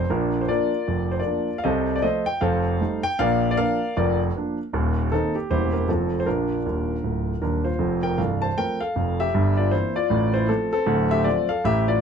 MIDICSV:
0, 0, Header, 1, 2, 480
1, 0, Start_track
1, 0, Key_signature, -2, "major"
1, 0, Tempo, 384862
1, 127, Time_signature, 4, 2, 24, 8
1, 9731, Key_signature, -1, "major"
1, 14979, End_track
2, 0, Start_track
2, 0, Title_t, "Grand piano"
2, 0, Program_c, 0, 0
2, 0, Note_on_c, 0, 72, 76
2, 121, Note_on_c, 0, 46, 75
2, 128, Note_on_c, 0, 34, 76
2, 128, Note_on_c, 0, 70, 77
2, 132, Note_off_c, 0, 72, 0
2, 139, Note_on_c, 0, 65, 57
2, 140, Note_on_c, 0, 62, 62
2, 366, Control_c, 0, 64, 127
2, 494, Note_off_c, 0, 62, 0
2, 494, Note_off_c, 0, 65, 0
2, 515, Note_off_c, 0, 70, 0
2, 516, Note_on_c, 0, 72, 70
2, 532, Note_off_c, 0, 46, 0
2, 537, Note_off_c, 0, 34, 0
2, 605, Note_on_c, 0, 74, 85
2, 608, Note_off_c, 0, 72, 0
2, 609, Note_on_c, 0, 58, 44
2, 610, Note_on_c, 0, 53, 39
2, 618, Note_on_c, 0, 65, 60
2, 623, Note_on_c, 0, 62, 51
2, 624, Control_c, 0, 64, 0
2, 632, Note_on_c, 0, 70, 67
2, 873, Note_off_c, 0, 58, 0
2, 874, Note_off_c, 0, 53, 0
2, 883, Note_off_c, 0, 62, 0
2, 1093, Note_on_c, 0, 41, 58
2, 1094, Note_on_c, 0, 29, 62
2, 1338, Note_off_c, 0, 65, 0
2, 1345, Note_off_c, 0, 70, 0
2, 1381, Note_off_c, 0, 74, 0
2, 1391, Note_on_c, 0, 72, 73
2, 1480, Note_off_c, 0, 72, 0
2, 1489, Note_on_c, 0, 74, 71
2, 1500, Note_off_c, 0, 29, 0
2, 1500, Note_off_c, 0, 41, 0
2, 1500, Note_on_c, 0, 70, 50
2, 1504, Note_on_c, 0, 65, 53
2, 1568, Note_on_c, 0, 53, 56
2, 1570, Note_on_c, 0, 58, 45
2, 1579, Note_on_c, 0, 62, 46
2, 1833, Note_off_c, 0, 53, 0
2, 1834, Note_off_c, 0, 58, 0
2, 1841, Note_off_c, 0, 62, 0
2, 1936, Note_off_c, 0, 70, 0
2, 1938, Note_off_c, 0, 65, 0
2, 1963, Note_off_c, 0, 74, 0
2, 1975, Note_on_c, 0, 77, 85
2, 2041, Note_on_c, 0, 75, 85
2, 2053, Note_on_c, 0, 36, 72
2, 2055, Note_on_c, 0, 48, 86
2, 2059, Note_off_c, 0, 77, 0
2, 2064, Note_on_c, 0, 69, 77
2, 2065, Note_on_c, 0, 72, 65
2, 2294, Control_c, 0, 64, 127
2, 2418, Note_off_c, 0, 69, 0
2, 2418, Note_off_c, 0, 72, 0
2, 2433, Note_off_c, 0, 75, 0
2, 2439, Note_on_c, 0, 74, 76
2, 2460, Note_off_c, 0, 36, 0
2, 2461, Note_off_c, 0, 48, 0
2, 2522, Note_on_c, 0, 53, 55
2, 2524, Note_on_c, 0, 75, 94
2, 2531, Note_off_c, 0, 74, 0
2, 2534, Note_on_c, 0, 57, 54
2, 2542, Control_c, 0, 64, 0
2, 2542, Note_on_c, 0, 65, 52
2, 2542, Note_on_c, 0, 69, 60
2, 2542, Note_on_c, 0, 72, 70
2, 2789, Note_off_c, 0, 53, 0
2, 2797, Note_off_c, 0, 57, 0
2, 2803, Note_off_c, 0, 65, 0
2, 2810, Note_off_c, 0, 69, 0
2, 2810, Note_off_c, 0, 72, 0
2, 2820, Note_on_c, 0, 79, 102
2, 2821, Note_off_c, 0, 75, 0
2, 3004, Note_on_c, 0, 77, 91
2, 3008, Note_off_c, 0, 79, 0
2, 3008, Note_on_c, 0, 41, 82
2, 3009, Note_on_c, 0, 29, 68
2, 3019, Note_on_c, 0, 69, 79
2, 3021, Note_on_c, 0, 72, 79
2, 3253, Control_c, 0, 64, 127
2, 3417, Note_off_c, 0, 41, 0
2, 3418, Note_off_c, 0, 29, 0
2, 3494, Note_on_c, 0, 55, 50
2, 3497, Note_on_c, 0, 57, 47
2, 3500, Note_on_c, 0, 63, 51
2, 3504, Control_c, 0, 64, 0
2, 3739, Note_off_c, 0, 69, 0
2, 3741, Note_off_c, 0, 72, 0
2, 3758, Note_off_c, 0, 55, 0
2, 3760, Note_off_c, 0, 57, 0
2, 3762, Note_off_c, 0, 63, 0
2, 3782, Note_off_c, 0, 77, 0
2, 3784, Note_on_c, 0, 79, 118
2, 3971, Note_off_c, 0, 79, 0
2, 3979, Note_on_c, 0, 46, 83
2, 3979, Note_on_c, 0, 77, 110
2, 3984, Note_on_c, 0, 34, 83
2, 3997, Note_on_c, 0, 74, 81
2, 4001, Note_on_c, 0, 70, 71
2, 4204, Control_c, 0, 64, 127
2, 4345, Note_off_c, 0, 74, 0
2, 4347, Note_off_c, 0, 70, 0
2, 4362, Note_off_c, 0, 77, 0
2, 4378, Note_on_c, 0, 74, 91
2, 4384, Note_off_c, 0, 46, 0
2, 4386, Note_off_c, 0, 34, 0
2, 4454, Note_off_c, 0, 74, 0
2, 4458, Note_on_c, 0, 77, 106
2, 4459, Note_on_c, 0, 53, 48
2, 4464, Note_on_c, 0, 62, 52
2, 4467, Note_on_c, 0, 58, 51
2, 4469, Note_on_c, 0, 70, 70
2, 4470, Control_c, 0, 64, 0
2, 4473, Note_on_c, 0, 74, 69
2, 4721, Note_off_c, 0, 53, 0
2, 4725, Note_off_c, 0, 62, 0
2, 4727, Note_off_c, 0, 58, 0
2, 4907, Note_off_c, 0, 70, 0
2, 4909, Note_off_c, 0, 74, 0
2, 4935, Note_off_c, 0, 77, 0
2, 4949, Note_on_c, 0, 41, 74
2, 4949, Note_on_c, 0, 74, 84
2, 4950, Note_on_c, 0, 29, 78
2, 4966, Note_on_c, 0, 65, 65
2, 4967, Note_on_c, 0, 70, 67
2, 5224, Note_off_c, 0, 65, 0
2, 5224, Note_off_c, 0, 70, 0
2, 5234, Note_off_c, 0, 74, 0
2, 5349, Note_off_c, 0, 41, 0
2, 5350, Note_off_c, 0, 29, 0
2, 5440, Note_on_c, 0, 53, 41
2, 5446, Note_on_c, 0, 58, 50
2, 5451, Note_on_c, 0, 62, 54
2, 5696, Note_off_c, 0, 53, 0
2, 5700, Note_off_c, 0, 58, 0
2, 5704, Note_off_c, 0, 62, 0
2, 5903, Note_on_c, 0, 27, 88
2, 5907, Note_on_c, 0, 39, 77
2, 6118, Control_c, 0, 64, 127
2, 6306, Note_off_c, 0, 27, 0
2, 6309, Note_off_c, 0, 39, 0
2, 6383, Note_on_c, 0, 69, 89
2, 6386, Control_c, 0, 64, 0
2, 6390, Note_on_c, 0, 51, 42
2, 6391, Note_on_c, 0, 58, 51
2, 6400, Note_on_c, 0, 60, 61
2, 6407, Note_on_c, 0, 63, 67
2, 6649, Note_off_c, 0, 51, 0
2, 6649, Note_off_c, 0, 58, 0
2, 6660, Note_off_c, 0, 60, 0
2, 6664, Note_off_c, 0, 63, 0
2, 6671, Note_off_c, 0, 69, 0
2, 6677, Note_on_c, 0, 67, 68
2, 6853, Note_off_c, 0, 67, 0
2, 6863, Note_on_c, 0, 40, 65
2, 6864, Note_on_c, 0, 28, 65
2, 6864, Note_on_c, 0, 55, 41
2, 6865, Note_on_c, 0, 58, 40
2, 6868, Note_on_c, 0, 72, 88
2, 6872, Note_on_c, 0, 67, 76
2, 6874, Note_on_c, 0, 64, 71
2, 6878, Note_on_c, 0, 61, 41
2, 7084, Control_c, 0, 64, 127
2, 7125, Note_off_c, 0, 55, 0
2, 7126, Note_off_c, 0, 58, 0
2, 7135, Note_off_c, 0, 61, 0
2, 7136, Note_off_c, 0, 67, 0
2, 7137, Note_off_c, 0, 64, 0
2, 7151, Note_on_c, 0, 70, 62
2, 7154, Note_off_c, 0, 72, 0
2, 7266, Note_off_c, 0, 40, 0
2, 7267, Note_off_c, 0, 28, 0
2, 7334, Note_off_c, 0, 70, 0
2, 7335, Note_on_c, 0, 53, 36
2, 7337, Note_on_c, 0, 29, 60
2, 7337, Note_on_c, 0, 69, 65
2, 7340, Note_on_c, 0, 41, 69
2, 7349, Control_c, 0, 64, 0
2, 7351, Note_on_c, 0, 60, 57
2, 7352, Note_on_c, 0, 65, 51
2, 7573, Control_c, 0, 64, 127
2, 7598, Note_off_c, 0, 53, 0
2, 7702, Note_off_c, 0, 60, 0
2, 7702, Note_off_c, 0, 65, 0
2, 7721, Note_off_c, 0, 69, 0
2, 7730, Note_on_c, 0, 72, 79
2, 7742, Note_off_c, 0, 29, 0
2, 7744, Note_off_c, 0, 41, 0
2, 7810, Note_on_c, 0, 46, 55
2, 7812, Note_on_c, 0, 34, 58
2, 7813, Note_on_c, 0, 70, 75
2, 7817, Note_off_c, 0, 72, 0
2, 7823, Note_on_c, 0, 62, 59
2, 7824, Control_c, 0, 64, 0
2, 7827, Note_on_c, 0, 65, 59
2, 8057, Control_c, 0, 64, 127
2, 8194, Note_off_c, 0, 46, 0
2, 8195, Note_off_c, 0, 34, 0
2, 8302, Control_c, 0, 64, 0
2, 8305, Note_on_c, 0, 27, 62
2, 8308, Note_on_c, 0, 39, 61
2, 8660, Note_off_c, 0, 27, 0
2, 8662, Note_off_c, 0, 39, 0
2, 8772, Note_on_c, 0, 26, 54
2, 8778, Note_on_c, 0, 38, 51
2, 9132, Note_off_c, 0, 26, 0
2, 9135, Note_off_c, 0, 38, 0
2, 9233, Note_off_c, 0, 70, 0
2, 9244, Note_on_c, 0, 27, 49
2, 9247, Note_off_c, 0, 62, 0
2, 9251, Note_on_c, 0, 39, 60
2, 9251, Note_on_c, 0, 70, 66
2, 9266, Note_on_c, 0, 62, 53
2, 9503, Note_off_c, 0, 65, 0
2, 9532, Note_off_c, 0, 62, 0
2, 9535, Note_on_c, 0, 72, 69
2, 9543, Note_on_c, 0, 65, 57
2, 9545, Note_off_c, 0, 70, 0
2, 9606, Note_off_c, 0, 27, 0
2, 9611, Note_off_c, 0, 39, 0
2, 9714, Note_on_c, 0, 29, 71
2, 9715, Note_on_c, 0, 41, 70
2, 9961, Control_c, 0, 64, 127
2, 9990, Note_off_c, 0, 65, 0
2, 10015, Note_on_c, 0, 79, 91
2, 10019, Note_off_c, 0, 72, 0
2, 10025, Note_on_c, 0, 70, 66
2, 10104, Note_off_c, 0, 29, 0
2, 10105, Note_off_c, 0, 41, 0
2, 10197, Note_off_c, 0, 70, 0
2, 10198, Note_on_c, 0, 24, 71
2, 10200, Note_on_c, 0, 36, 68
2, 10200, Note_on_c, 0, 77, 70
2, 10205, Note_off_c, 0, 79, 0
2, 10216, Note_on_c, 0, 69, 49
2, 10228, Control_c, 0, 64, 0
2, 10486, Note_off_c, 0, 69, 0
2, 10497, Note_on_c, 0, 81, 87
2, 10499, Note_off_c, 0, 77, 0
2, 10505, Note_on_c, 0, 72, 63
2, 10586, Note_off_c, 0, 24, 0
2, 10587, Note_off_c, 0, 36, 0
2, 10677, Note_off_c, 0, 72, 0
2, 10686, Note_off_c, 0, 81, 0
2, 10694, Note_on_c, 0, 57, 46
2, 10696, Note_on_c, 0, 60, 50
2, 10697, Note_on_c, 0, 79, 103
2, 10698, Note_on_c, 0, 53, 40
2, 10705, Note_on_c, 0, 70, 70
2, 10957, Note_off_c, 0, 57, 0
2, 10958, Note_off_c, 0, 60, 0
2, 10960, Note_off_c, 0, 53, 0
2, 10971, Note_off_c, 0, 70, 0
2, 10982, Note_on_c, 0, 77, 85
2, 10987, Note_off_c, 0, 79, 0
2, 10999, Note_on_c, 0, 69, 56
2, 11170, Note_on_c, 0, 29, 61
2, 11173, Note_on_c, 0, 41, 66
2, 11437, Note_off_c, 0, 69, 0
2, 11462, Note_off_c, 0, 77, 0
2, 11473, Note_on_c, 0, 76, 94
2, 11480, Note_on_c, 0, 67, 71
2, 11553, Note_off_c, 0, 29, 0
2, 11555, Note_off_c, 0, 41, 0
2, 11649, Note_on_c, 0, 31, 71
2, 11656, Note_on_c, 0, 43, 80
2, 11861, Control_c, 0, 64, 127
2, 11918, Note_off_c, 0, 67, 0
2, 11937, Note_on_c, 0, 74, 78
2, 11947, Note_off_c, 0, 76, 0
2, 11957, Note_on_c, 0, 65, 66
2, 12056, Note_off_c, 0, 31, 0
2, 12060, Note_off_c, 0, 43, 0
2, 12115, Note_on_c, 0, 52, 45
2, 12115, Note_on_c, 0, 72, 86
2, 12123, Note_off_c, 0, 65, 0
2, 12123, Note_on_c, 0, 60, 44
2, 12125, Note_off_c, 0, 74, 0
2, 12126, Note_on_c, 0, 58, 45
2, 12128, Note_on_c, 0, 64, 67
2, 12143, Control_c, 0, 64, 0
2, 12382, Note_off_c, 0, 52, 0
2, 12388, Note_off_c, 0, 60, 0
2, 12390, Note_off_c, 0, 58, 0
2, 12401, Note_off_c, 0, 64, 0
2, 12415, Note_off_c, 0, 72, 0
2, 12420, Note_on_c, 0, 74, 88
2, 12429, Note_on_c, 0, 65, 71
2, 12596, Note_on_c, 0, 45, 72
2, 12603, Note_on_c, 0, 33, 79
2, 12847, Control_c, 0, 64, 127
2, 12872, Note_off_c, 0, 65, 0
2, 12891, Note_on_c, 0, 72, 86
2, 12900, Note_off_c, 0, 74, 0
2, 12913, Note_on_c, 0, 64, 63
2, 13008, Note_off_c, 0, 45, 0
2, 13012, Note_off_c, 0, 33, 0
2, 13078, Note_on_c, 0, 69, 89
2, 13080, Note_off_c, 0, 64, 0
2, 13082, Note_off_c, 0, 72, 0
2, 13087, Note_on_c, 0, 57, 49
2, 13088, Note_on_c, 0, 53, 53
2, 13096, Note_on_c, 0, 60, 56
2, 13100, Control_c, 0, 64, 0
2, 13351, Note_off_c, 0, 53, 0
2, 13351, Note_off_c, 0, 57, 0
2, 13360, Note_off_c, 0, 69, 0
2, 13365, Note_off_c, 0, 60, 0
2, 13378, Note_on_c, 0, 69, 97
2, 13393, Note_on_c, 0, 60, 75
2, 13549, Note_on_c, 0, 26, 80
2, 13549, Note_on_c, 0, 38, 92
2, 13802, Control_c, 0, 64, 127
2, 13833, Note_off_c, 0, 60, 0
2, 13857, Note_on_c, 0, 76, 98
2, 13859, Note_off_c, 0, 69, 0
2, 13869, Note_on_c, 0, 67, 70
2, 13964, Note_off_c, 0, 26, 0
2, 13964, Note_off_c, 0, 38, 0
2, 14020, Note_on_c, 0, 53, 53
2, 14022, Note_on_c, 0, 74, 83
2, 14028, Note_on_c, 0, 57, 52
2, 14032, Note_on_c, 0, 60, 56
2, 14035, Note_on_c, 0, 65, 66
2, 14037, Note_off_c, 0, 67, 0
2, 14044, Note_off_c, 0, 76, 0
2, 14062, Control_c, 0, 64, 0
2, 14291, Note_off_c, 0, 53, 0
2, 14297, Note_off_c, 0, 57, 0
2, 14300, Note_off_c, 0, 60, 0
2, 14313, Note_off_c, 0, 65, 0
2, 14328, Note_off_c, 0, 74, 0
2, 14328, Note_on_c, 0, 77, 94
2, 14346, Note_on_c, 0, 69, 71
2, 14516, Note_off_c, 0, 69, 0
2, 14520, Note_off_c, 0, 77, 0
2, 14522, Note_on_c, 0, 33, 77
2, 14528, Note_on_c, 0, 45, 78
2, 14532, Note_on_c, 0, 76, 100
2, 14542, Note_on_c, 0, 67, 83
2, 14807, Note_off_c, 0, 67, 0
2, 14818, Note_on_c, 0, 74, 89
2, 14822, Note_off_c, 0, 76, 0
2, 14828, Note_on_c, 0, 65, 68
2, 14931, Note_off_c, 0, 33, 0
2, 14934, Note_off_c, 0, 45, 0
2, 14979, Note_off_c, 0, 65, 0
2, 14979, Note_off_c, 0, 74, 0
2, 14979, End_track
0, 0, End_of_file